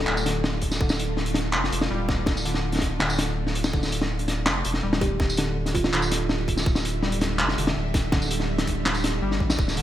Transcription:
Already playing: D3 A3 F4 A4
0.07 D1, clap
0.17 tambourine
0.26 D3, snare, closed hi-hat
0.44 snare
0.61 kick, closed hi-hat
0.71 snare, tambourine
0.81 D1 D3, kick
0.89 snare, tambourine
0.99 closed hi-hat
1.17 snare
1.26 closed hi-hat
1.34 snare, closed hi-hat
1.53 F1, clap
1.64 snare
1.72 E1, closed hi-hat
1.81 snare
1.90 D1 G3
2.09 D2, kick, snare
2.26 kick, snare
2.37 tambourine
2.45 D3, closed hi-hat
2.54 snare
2.72 snare, closed hi-hat
2.75 snare
2.79 kick, snare, closed hi-hat
3.00 D1 D3, clap, snare
3.10 tambourine
3.19 snare, closed hi-hat
3.47 snare
3.55 closed hi-hat
3.64 snare, tambourine
3.73 D1 D3 G3 E5, kick
3.83 snare, tambourine
3.92 closed hi-hat
4.01 snare
4.19 closed hi-hat
4.28 snare, closed hi-hat
4.46 F1, clap, snare
4.65 E1, closed hi-hat
4.74 snare
4.83 D1 G3
4.93 snare
5.01 D2 G4, kick, closed hi-hat
5.20 kick, snare
5.30 tambourine
5.37 D3, snare, closed hi-hat
5.66 snare, closed hi-hat
5.74 F4, kick, closed hi-hat
5.84 snare
5.93 D1 D3, clap
6.02 tambourine
6.11 snare, closed hi-hat
6.29 snare
6.48 kick, closed hi-hat
6.57 snare, tambourine
6.66 D1, kick
6.75 snare, tambourine
6.85 closed hi-hat
7.03 G3, snare
7.12 closed hi-hat
7.21 D2, snare, closed hi-hat
7.39 F1, clap
7.49 snare
7.57 E1 D3, closed hi-hat
7.67 snare
7.76 D1
7.94 kick, snare, closed hi-hat
8.12 D3, kick, snare
8.22 tambourine
8.31 closed hi-hat
8.40 snare
8.58 snare, closed hi-hat
8.67 kick, closed hi-hat
8.86 D1, clap, snare
8.94 tambourine
9.04 snare, closed hi-hat
9.22 G1 G3
9.31 snare
9.40 A1 D2, kick
9.50 snare, tambourine
9.59 D1, kick
9.68 snare, tambourine
9.77 D3, closed hi-hat

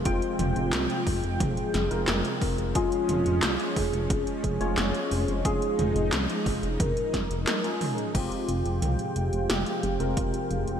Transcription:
Already playing: C3 F3 G#3
0.05 F1 G#3 C4 F4 G5, kick, closed hi-hat
0.22 closed hi-hat
0.39 F1, closed hi-hat, mid tom
0.56 F1, closed hi-hat
0.73 C2, snare, clap, closed hi-hat
0.90 closed hi-hat
1.07 F1, kick, open hi-hat
1.24 F1, closed hi-hat
1.40 F1 G#4, kick, closed hi-hat, mid tom
1.57 closed hi-hat
1.74 F1, snare, closed hi-hat
1.91 F1 G#3 C4 F4 A#4, closed hi-hat
2.08 F1, snare, clap, closed hi-hat
2.25 closed hi-hat
2.41 F1, kick, open hi-hat
2.58 F1, closed hi-hat
2.75 F1 G#3 C#4 F4 G#4, kick, closed hi-hat
2.92 closed hi-hat
3.09 F1, closed hi-hat, mid tom
3.26 F1, closed hi-hat
3.43 C2, snare, clap, closed hi-hat
3.60 closed hi-hat
3.76 F1 G#4, kick, open hi-hat
3.93 F1, closed hi-hat
4.10 F1, kick, closed hi-hat
4.27 closed hi-hat
4.44 F1 G#4, kick, closed hi-hat
4.61 F1 G#3 C#4 F4 C#5, closed hi-hat
4.77 F1, snare, clap, closed hi-hat
4.95 closed hi-hat
5.11 F1, open hi-hat
5.28 F1, closed hi-hat
5.45 F1 G#3 C#4 D#4 F4 G#4, kick, closed hi-hat
5.62 closed hi-hat
5.79 F1, closed hi-hat, mid tom
5.95 F1, closed hi-hat
6.12 C2, snare, clap, closed hi-hat
6.30 closed hi-hat
6.46 F1, kick, open hi-hat
6.63 F1, closed hi-hat
6.80 F1 A#4, kick, closed hi-hat, mid tom
6.97 closed hi-hat
7.14 F1, kick, snare, closed hi-hat
7.30 F1, closed hi-hat
7.47 snare, clap, closed hi-hat
7.64 G#3 C#4 F4 G#4, closed hi-hat
7.81 mid tom, open hi-hat
7.98 closed hi-hat
8.15 F1 C3 F3 G#3 C4 F4 G4 G5, kick, closed hi-hat, crash
8.32 closed hi-hat
8.48 F1, closed hi-hat
8.65 F1, closed hi-hat
8.82 C2, closed hi-hat, mid tom
8.99 closed hi-hat
9.16 F1 G4, closed hi-hat
9.33 F1, closed hi-hat
9.50 F1, snare, closed hi-hat
9.66 closed hi-hat
9.83 F1 G4, closed hi-hat
10.00 F1 G#3 C4 F4 A#4, closed hi-hat
10.17 F1, kick, closed hi-hat
10.34 closed hi-hat
10.51 F1, closed hi-hat
10.67 F1, closed hi-hat

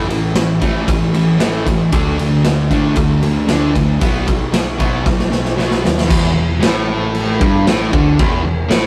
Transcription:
0.08 A1 A2 E3, ride
0.34 A1 A2 E3, snare, ride
0.60 A1 A2 E3 A3, kick, ride
0.87 A1 A2 E3, kick, ride
1.13 A1 A2 E3, ride
1.39 A1 A2 E3 A3, snare, ride
1.66 A1 A2 E3, kick, ride
1.91 D2 D3 A3 D4, kick, ride
2.18 D2 D3 A3, ride
2.45 D2 D3 A3, snare, ride
2.70 A2 D3 A3 D4, kick, ride
2.95 D2 D3 A3, kick, ride
3.22 D2 D3 A3, ride
3.48 D2 D3 A3 D4, snare, ride
3.74 D3 A3, kick, ride
4.00 B1 B2 F#3 B3, kick, ride
4.27 B1 B2 F#3, kick, ride
4.52 B1 B2 F#3, snare, ride
4.78 B1 B2 F#3 B3, kick, ride
5.03 B1 B2 F#3, kick, snare
5.19 snare
5.30 B1 B2 F#3, snare
5.45 snare
5.56 B1 B2 F#3 B3, snare
5.71 snare
5.82 D#2 B2 F#3, snare
5.98 snare
6.07 E1 E2, kick, crash
6.35 E1 E2
6.60 A1 A2, snare, crash
7.15 crash
7.40 G1 G2, kick
7.66 A1 A2, snare, crash
7.92 D2 D3, kick
8.19 E1 E2, kick, crash
8.44 E1 E2
8.69 A1 A2, snare, crash

